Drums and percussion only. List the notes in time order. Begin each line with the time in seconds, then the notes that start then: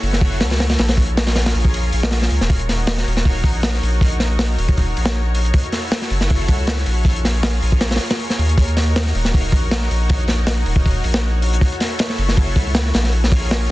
0.03 open hi-hat
0.13 snare
0.21 kick, open hi-hat
0.41 snare, open hi-hat
0.50 snare, open hi-hat
0.60 snare, open hi-hat
0.69 snare, open hi-hat
0.79 snare, open hi-hat
0.88 snare, open hi-hat
0.97 kick, open hi-hat
1.07 closed hi-hat
1.17 snare, open hi-hat
1.27 snare, open hi-hat
1.36 snare, open hi-hat
1.46 snare, open hi-hat
1.55 open hi-hat
1.65 kick
1.74 open hi-hat
1.92 open hi-hat
2.03 snare
2.11 snare, open hi-hat
2.22 snare
2.30 open hi-hat
2.41 snare
2.50 kick, open hi-hat
2.59 closed hi-hat
2.69 snare, open hi-hat
2.87 snare, open hi-hat
2.98 snare
3.08 open hi-hat
3.17 snare
3.25 kick, open hi-hat
3.44 kick, open hi-hat
3.63 snare, open hi-hat
3.74 snare
3.83 open hi-hat
4.01 kick, open hi-hat
4.11 closed hi-hat
4.20 snare, open hi-hat
4.39 snare, open hi-hat
4.59 open hi-hat
4.69 kick
4.78 kick, open hi-hat
4.97 open hi-hat
5.06 snare
5.35 open hi-hat
5.45 closed hi-hat
5.54 kick, open hi-hat
5.64 closed hi-hat
5.72 snare, open hi-hat
5.92 snare, open hi-hat
6.02 snare
6.10 open hi-hat
6.21 snare
6.30 kick, open hi-hat
6.48 kick, open hi-hat
6.67 snare, open hi-hat
6.77 snare
6.86 open hi-hat
7.05 kick, open hi-hat
7.16 closed hi-hat
7.25 snare, open hi-hat
7.43 snare, open hi-hat
7.62 open hi-hat
7.72 kick
7.81 snare, open hi-hat
7.91 snare, open hi-hat
7.96 snare, open hi-hat
8.01 open hi-hat
8.11 snare
8.19 open hi-hat
8.30 snare
8.39 open hi-hat
8.49 closed hi-hat
8.58 kick, open hi-hat
8.68 closed hi-hat
8.77 snare, open hi-hat
8.96 snare, open hi-hat
9.07 snare
9.15 open hi-hat
9.25 snare
9.34 kick, open hi-hat
9.52 kick, open hi-hat
9.71 snare, open hi-hat
9.81 snare
9.91 open hi-hat
10.10 kick, open hi-hat
10.20 closed hi-hat
10.28 snare, open hi-hat
10.47 snare, open hi-hat
10.66 open hi-hat
10.76 kick
10.86 kick, open hi-hat
11.04 open hi-hat
11.14 snare
11.42 open hi-hat
11.53 closed hi-hat
11.61 kick, open hi-hat
11.72 closed hi-hat
11.80 snare, open hi-hat
11.99 snare, open hi-hat
12.09 snare
12.18 open hi-hat
12.29 snare
12.37 kick, open hi-hat
12.56 kick, open hi-hat
12.75 snare, open hi-hat
12.86 snare
12.94 snare, open hi-hat
13.04 snare
13.13 open hi-hat
13.24 snare
13.32 kick, open hi-hat
13.51 snare, open hi-hat